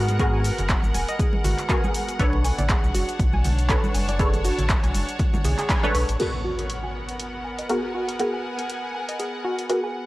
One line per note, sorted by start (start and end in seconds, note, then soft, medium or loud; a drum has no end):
0.00 0.51 G#2 loud
0.00 0.17 B3 medium
0.00 3.56 B3 medium
0.00 0.17 F#4 medium
0.00 0.17 G#4 medium
0.00 0.17 A#4 medium
0.00 2.19 A#4 medium
0.00 3.16 F#5 medium
0.00 6.18 F#5 medium
0.09 closed hi-hat medium
0.09 muted conga soft
0.09 cabasa soft
0.19 1.67 B3 medium
0.19 1.67 F#4 medium
0.19 1.67 G#4 medium
0.19 1.67 A#4 medium
0.19 kick loud
0.19 closed hi-hat medium
0.19 cabasa soft
0.34 0.36 G#5 medium
0.44 open hi-hat loud
0.44 cabasa medium
0.58 0.75 F#1 loud
0.58 closed hi-hat medium
0.58 low conga medium
0.58 cabasa soft
0.69 kick loud
0.69 clap loud
0.69 closed hi-hat medium
0.69 cabasa soft
0.83 0.91 G#1 medium
0.83 high conga medium
0.83 cabasa soft
0.94 1.04 D#1 medium
0.94 1.00 G#5 medium
0.94 open hi-hat medium
0.94 muted conga medium
0.94 cabasa medium
1.09 1.13 D#5 medium
1.09 closed hi-hat medium
1.09 cabasa soft
1.19 1.25 G#4 medium
1.19 kick loud
1.19 closed hi-hat medium
1.19 cabasa soft
1.33 high conga medium
1.44 1.54 G#1 medium
1.44 1.53 F#4 loud
1.44 open hi-hat loud
1.44 low conga medium
1.44 cabasa medium
1.58 clap soft
1.58 closed hi-hat medium
1.58 cabasa soft
1.69 2.17 B3 medium
1.69 2.17 F#4 medium
1.69 2.17 G#4 medium
1.69 2.17 A#4 medium
1.69 kick loud
1.69 clap loud
1.69 closed hi-hat medium
1.69 cabasa soft
1.84 1.86 G#5 medium
1.84 high conga medium
1.84 cabasa soft
1.94 open hi-hat medium
1.94 cabasa medium
2.09 closed hi-hat medium
2.09 cabasa soft
2.19 2.51 B1 medium
2.19 3.67 D4 medium
2.19 6.19 D4 medium
2.19 3.67 A4 medium
2.19 3.67 B4 medium
2.19 3.67 C#5 medium
2.19 kick loud
2.19 closed hi-hat medium
2.19 cabasa soft
2.33 muted conga medium
2.44 2.50 G#5 medium
2.44 open hi-hat loud
2.44 cabasa medium
2.58 2.75 A1 loud
2.58 2.63 D5 medium
2.58 closed hi-hat medium
2.58 low conga medium
2.58 cabasa soft
2.63 7.51 C#5 medium
2.69 2.75 G#4 medium
2.69 kick loud
2.69 clap loud
2.69 closed hi-hat medium
2.69 cabasa soft
2.84 2.91 B1 medium
2.84 high conga medium
2.84 cabasa soft
2.95 3.04 F#1 medium
2.95 3.03 F#4 loud
2.95 open hi-hat medium
2.95 muted conga soft
2.95 cabasa medium
3.09 6.20 A5 medium
3.09 closed hi-hat medium
3.09 cabasa soft
3.19 3.76 B1 loud
3.19 kick loud
3.19 closed hi-hat medium
3.19 cabasa soft
3.33 3.36 G#5 medium
3.33 high conga medium
3.44 open hi-hat loud
3.44 low conga medium
3.44 cabasa medium
3.59 closed hi-hat medium
3.59 cabasa soft
3.69 4.17 D4 medium
3.69 4.17 A4 medium
3.69 4.17 B4 medium
3.69 4.17 C#5 medium
3.69 kick loud
3.69 clap loud
3.69 closed hi-hat medium
3.69 cabasa soft
3.84 high conga medium
3.84 cabasa soft
3.94 4.51 F#1 loud
3.94 4.00 G#5 medium
3.94 open hi-hat medium
3.94 cabasa medium
4.09 4.13 D5 medium
4.09 closed hi-hat medium
4.09 muted conga medium
4.09 cabasa soft
4.19 5.67 D4 medium
4.19 4.25 G#4 medium
4.19 5.67 A4 medium
4.19 5.67 B4 medium
4.19 5.67 C#5 medium
4.19 kick loud
4.19 closed hi-hat medium
4.19 cabasa soft
4.34 closed hi-hat soft
4.34 muted conga medium
4.34 cabasa soft
4.45 4.53 F#4 loud
4.45 open hi-hat loud
4.45 cabasa medium
4.58 4.75 A1 loud
4.58 closed hi-hat medium
4.58 low conga medium
4.58 cabasa soft
4.69 kick loud
4.69 clap loud
4.69 closed hi-hat medium
4.69 cabasa soft
4.84 4.91 B1 medium
4.84 4.86 G#5 medium
4.84 closed hi-hat soft
4.84 high conga medium
4.84 cabasa soft
4.94 5.04 F#1 medium
4.94 open hi-hat medium
4.94 muted conga medium
4.94 cabasa medium
5.09 closed hi-hat medium
5.09 cabasa soft
5.19 kick loud
5.19 closed hi-hat medium
5.19 muted conga medium
5.19 cabasa soft
5.33 high conga medium
5.33 low conga medium
5.33 cabasa soft
5.44 5.54 B1 medium
5.44 5.48 G#4 medium
5.44 open hi-hat loud
5.44 low conga loud
5.44 cabasa medium
5.58 5.63 G#4 medium
5.58 clap soft
5.58 closed hi-hat medium
5.58 cabasa soft
5.69 5.75 G#5 loud
5.69 kick loud
5.69 clap loud
5.69 closed hi-hat medium
5.69 cabasa soft
5.83 6.17 D4 medium
5.83 6.17 A4 medium
5.83 6.17 B4 medium
5.83 6.17 C#5 loud
5.83 high conga medium
5.83 cabasa soft
5.95 6.04 B1 loud
5.95 5.98 B4 loud
5.95 open hi-hat medium
5.95 cabasa medium
6.09 6.16 A1 medium
6.09 closed hi-hat medium
6.09 cabasa soft
6.19 7.67 B3 medium
6.19 10.06 B3 medium
6.19 7.67 F#4 medium
6.19 7.67 G#4 medium
6.19 6.25 G#4 medium
6.19 7.67 A#4 medium
6.19 10.06 F#5 medium
6.19 closed hi-hat medium
6.19 crash medium
6.19 impact medium
6.44 6.53 F#4 loud
6.44 10.06 A#4 medium
6.59 closed hi-hat medium
6.68 10.06 F#5 medium
6.68 closed hi-hat medium
6.84 6.86 G#5 medium
7.09 closed hi-hat medium
7.20 closed hi-hat medium
7.44 7.50 G#5 medium
7.59 7.63 D#5 medium
7.59 closed hi-hat medium
7.69 8.17 B3 medium
7.69 8.17 F#4 medium
7.69 8.17 G#4 medium
7.69 7.75 G#4 medium
7.69 8.17 A#4 medium
7.69 10.06 G#5 medium
7.69 closed hi-hat medium
7.95 8.03 F#4 loud
8.09 closed hi-hat medium
8.19 9.67 B3 medium
8.19 9.67 F#4 medium
8.19 9.67 G#4 medium
8.19 9.67 A#4 medium
8.19 closed hi-hat medium
8.34 8.36 G#5 medium
8.59 closed hi-hat medium
8.70 closed hi-hat medium
8.95 9.00 G#5 medium
9.09 9.13 D#5 medium
9.09 closed hi-hat medium
9.20 9.25 G#4 medium
9.20 closed hi-hat medium
9.44 9.53 F#4 loud
9.59 closed hi-hat medium
9.69 10.06 B3 medium
9.69 10.06 F#4 medium
9.69 10.06 G#4 medium
9.69 10.06 A#4 medium
9.69 closed hi-hat medium
9.84 9.86 G#5 medium